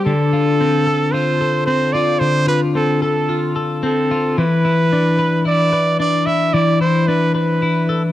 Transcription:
0.00 0.12 G3 medium
0.00 0.12 G4 medium
0.00 0.86 C5 medium
0.06 2.20 D3 medium
0.06 1.14 A4 medium
0.33 1.13 F4 soft
0.61 1.66 C4 medium
0.87 1.40 A4 medium
1.13 1.93 F4 medium
1.13 1.66 C5 medium
1.41 3.01 A4 medium
1.66 2.74 C4 medium
1.66 1.94 C5 medium
1.93 2.46 F4 medium
1.93 2.21 D5 medium
2.19 4.38 D3 medium
2.19 2.48 C5 loud
2.47 3.28 F4 medium
2.47 2.60 B4 medium
2.75 3.82 C4 medium
2.75 3.01 A4 medium
3.02 3.55 A4 medium
3.02 3.53 A4 medium
3.29 4.10 F4 medium
3.56 4.43 A4 medium
3.83 4.43 C4 medium
3.83 4.35 A4 medium
4.11 4.44 F4 medium
4.38 6.54 E3 medium
4.38 5.42 B4 medium
4.65 5.45 E4 medium
4.93 5.98 D4 medium
5.19 5.72 B4 medium
5.45 6.26 E4 medium
5.45 5.97 D5 loud
5.73 7.34 B4 medium
6.00 7.07 D4 medium
6.00 6.28 D5 loud
6.26 6.80 E4 medium
6.26 6.55 E5 medium
6.54 8.12 E3 medium
6.54 6.80 D5 loud
6.81 7.62 E4 medium
6.81 7.09 C5 medium
7.08 8.12 D4 soft
7.08 7.34 B4 medium
7.35 7.89 B4 medium
7.35 8.12 B4 medium
7.62 8.12 E4 medium
7.89 8.02 A4 medium

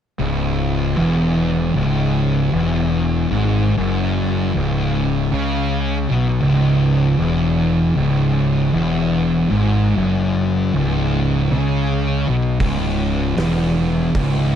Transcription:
0.19 0.94 C#1 medium
0.19 0.96 C#2 loud
0.97 1.72 E1 medium
0.97 1.74 E2 loud
1.75 2.49 C#1 medium
1.75 2.52 C#2 medium
2.53 3.27 E1 loud
2.53 3.30 E2 loud
3.30 3.74 G#1 medium
3.30 3.76 G#2 loud
3.77 4.51 F#1 medium
3.77 4.54 F#2 loud
4.56 5.29 C#1 loud
4.56 5.32 C#2 loud
5.33 6.06 C#2 loud
5.33 6.09 C#3 loud
6.10 6.40 B1 medium
6.10 6.41 B2 loud
6.42 7.15 C#1 loud
6.42 7.18 C#2 loud
7.19 7.92 E1 medium
7.19 7.96 E2 loud
7.96 8.70 C#1 medium
7.96 8.73 C#2 loud
8.73 9.47 E1 medium
8.73 9.50 E2 loud
9.51 9.94 G#1 medium
9.51 9.96 G#2 loud
9.97 10.71 F#1 loud
9.97 10.73 F#2 loud
10.75 11.48 C#1 loud
10.75 11.51 C#2 medium
11.52 12.25 C#2 medium
11.52 12.28 C#3 medium
12.28 12.58 B1 medium
12.28 12.59 B2 loud
12.59 13.34 C#1 medium
12.59 13.36 C#2 loud
12.59 kick medium
12.59 open hi-hat soft
13.37 14.11 E1 medium
13.37 14.14 E2 loud
13.37 snare loud
13.37 open hi-hat medium
14.14 14.55 C#1 loud
14.14 14.55 C#2 loud
14.14 kick loud
14.14 open hi-hat medium

